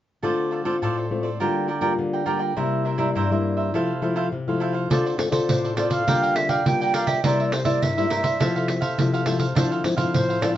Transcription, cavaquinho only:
0.23 F4 A4 C5 D5
0.51 F4 A4 C5 D5
0.65 F4 A4 C5 D5
0.82 F4 A4 C5 D5
0.97 A4 C5 D5
1.23 A4 C5 D5
1.40 F4 A#4 D5 G5
1.68 F4 A#4 D5 G5
1.81 F4 A#4 D5 G5
2.13 A#4 D5 G5
2.26 F4 A#4 D5 G5
2.39 A#4 D5 G5
2.56 E4 A#4 C5 E5
2.85 E4 A#4 C5 E5
2.98 E4 A#4 C5 E5
3.15 E4 A#4 C5 E5
3.31 A#4 C5 E5
3.57 A#4 C5 E5
3.74 E4 A4 C5 F5
4.02 E4 A4 C5 F5
4.16 E4 A4 C5 F5
4.48 A4 C5 F5
4.60 E4 A4 C5 F5
4.73 A4 C5 F5
4.90 F4 A4 C5 D5
5.05 A4 C5 D5
5.18 muted cavaquinho stroke
5.32 A4 C5 D5
5.64 A4 C5 D5
5.77 F4 A4 C5 D5
5.90 A4 C5 D5
6.07 F4 A#4 D5 G5
6.22 A#4 D5 G5
6.36 muted cavaquinho stroke
6.49 A#4 D5 G5
6.81 A#4 D5 G5
6.94 F4 A#4 D5 G5
7.08 A#4 D5 G5
7.24 E4 A#4 C5 E5
7.40 A#4 C5 E5
7.52 muted cavaquinho stroke
7.65 A#4 C5 E5
7.97 A#4 C5 E5
8.10 E4 A#4 C5 E5
8.23 A#4 C5 E5
8.40 E4 A4 C5 F5
8.55 A4 C5 F5
8.68 muted cavaquinho stroke
8.81 A4 C5 F5
9.13 A4 C5 F5
9.26 E4 A4 C5 F5
9.39 A4 C5 F5
9.55 D4 A4 C5 F5
9.71 A4 C5 F5
9.84 muted cavaquinho stroke
9.97 A4 C5 F5
10.29 A4 C5 F5
10.41 D4 A4 C5 F5

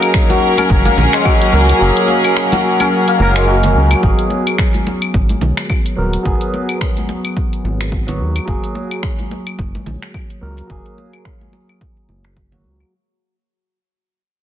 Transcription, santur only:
Already playing: A#3 C#4 D#4
0.02 A#4
0.30 F#3
0.58 C#4
0.85 A#3
1.13 G#3
1.25 F#3
1.53 C#4
1.81 C#4
2.08 A#3
2.25 A#4
2.52 F#3
2.81 C#4
3.08 A#3
3.36 G#3
3.47 F#3
3.75 C#4

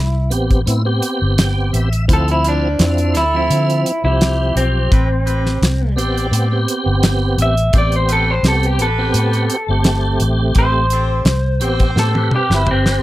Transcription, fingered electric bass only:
Already playing: C2
0.32 A1
0.67 A2
1.22 G1
1.73 A1
2.09 D2
2.79 F2
3.15 D2
3.50 D3
4.04 C2
4.56 B1
4.92 A1
5.62 C2
5.97 A1
6.31 A2
6.86 G1
7.38 A1
7.74 A1
8.43 C2
8.79 A1
9.14 A2
9.68 G1
10.20 A1
10.56 A1
11.25 C2
11.61 A1
11.96 A2
12.50 G1

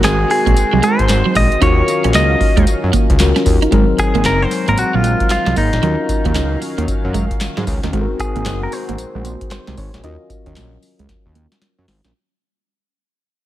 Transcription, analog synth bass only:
0.04 G#1
0.47 A#1
0.73 C2
0.99 G#1
1.09 G#1
1.36 A#1
1.62 D#2
2.05 A#1
2.15 C#2
2.57 D#2
2.84 F#2
3.10 C#2
3.20 C#2
3.46 D#2
3.72 G#1
4.15 G#1
4.25 F#1
4.68 G#1
4.78 A#1
4.94 A#1
5.47 C2
5.57 G#1
5.73 A#1
5.83 D#2
6.25 D#2
6.35 C#2
6.78 D#2
6.88 F#2
7.05 F#2
7.57 G#2
7.67 C#2
7.84 D#2
7.93 G#1
8.36 G#1
8.46 F#1
8.89 G#1
8.98 A#1
9.15 A#1
9.68 C2
9.78 G#1
9.94 A#1
10.04 D#2
10.46 D#2
10.57 A#1
10.99 C#2
11.09 D#2
11.26 D#2
11.78 F#2
11.88 G#1
12.05 A#1

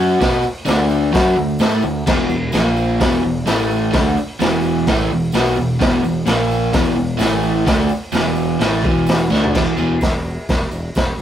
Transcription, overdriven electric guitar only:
Already playing: F#3 C#4 F#4
0.20 B3 F#4 B4
0.44 muted overdriven electric guitar stroke
0.65 D3 A3 D4
1.12 F#3 C#4 F#4
1.36 D3 A3
1.60 A3 E4 A4
1.82 D3 A3
2.07 E2 B2 E3
2.30 E2 B2
2.52 A#2 F3 A#3
3.00 E2 B2 E3
3.23 E2 B2
3.46 A2 E3 A3
3.92 D3 A3 D4
4.16 muted overdriven electric guitar stroke
4.40 E2 B2 E3
4.88 A2 E3 A3
5.10 E2 B2
5.34 B2 F#3 B3
5.57 E2 B2
5.79 E2 B2 E3
6.03 E2 B2
6.26 A#2 F3 A#3
6.73 E2 B2 E3
6.96 E2 B2
7.17 A2 E3 A3
7.66 D3 A3 D4
7.89 muted overdriven electric guitar stroke
8.12 E2 B2 E3
8.60 A2 E3 A3
8.82 E2 B2 E3
9.30 D3 A3 D4
9.53 E2 B2 E3
9.77 E2 B2 E3

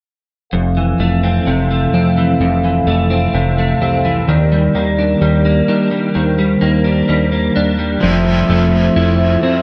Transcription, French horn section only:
0.52 C4 A4 E5 F5
4.28 A#3 G4 A#4 D5
6.16 C5
8.02 F3 A3 C5 E5

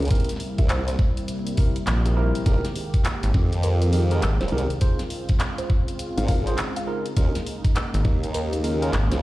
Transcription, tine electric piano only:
0.11 C4 E4 G4 A#4
1.58 C4 E4 G4 A#4
2.06 C4 E4 G4 A#4
2.17 C4 E4 G4 A#4
2.46 D#4 G4 G#4 A#4
3.93 D#4 G4 G#4 A#4
4.12 D#4 G4 G#4 A#4
4.52 D#4 G4 G#4 A#4
4.81 D#4 F4 G#4 C5
6.28 D#4 F4 G#4 A#4
6.47 D#4 F4 G#4 C5
6.87 D#4 F4 G#4 A#4
7.17 C#4 F4 G#4 A#4
8.64 C#4 F4 G#4 A#4
8.82 C#4 F4 G#4 A#4

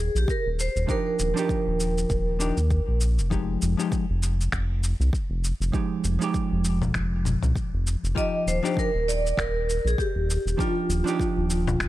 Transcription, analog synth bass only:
0.15 A#1
0.46 D#1
0.76 D#1
1.20 D#1
1.67 D#1
2.10 D#1
2.57 D#2
2.88 A#1
3.19 F1
3.62 F1
4.10 F1
4.53 F1
5.00 C2
5.30 F1
5.60 F1
6.04 F1
6.52 F1
6.95 F1
7.43 C2
7.74 F1
8.03 F1
8.47 D#1
8.95 D#1
9.38 D#1
9.85 A#1
10.15 D#1
10.46 D#1
10.89 D#1
11.37 D#1
11.80 D#1

